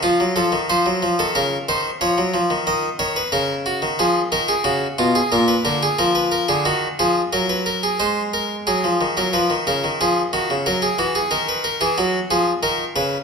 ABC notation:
X:1
M:4/4
L:1/16
Q:1/4=91
K:Ebm
V:1 name="Harpsichord"
F2 =A2 =c3 A B2 c2 d4 | e2 d c B2 G2 A2 B A G2 F A | B c B A B c B A G2 A2 B c B A | =c2 B2 A3 B _c2 B2 A2 G2 |
B A G A B c B A ^F2 A2 B2 =B2 |]
V:2 name="Harpsichord" clef=bass
F, G, F, E, F, G, F, E, D,2 E,2 F, G, F, E, | E,2 E,2 D,3 E, F,2 E,2 D,2 C,2 | B,,2 =D,2 F,3 D, E,2 F,2 G,4 | A,4 G, F, E, G, F, E, D, E, F,2 E, D, |
G,2 _F,2 E,3 F, ^F,2 =F,2 ^D,2 _D,2 |]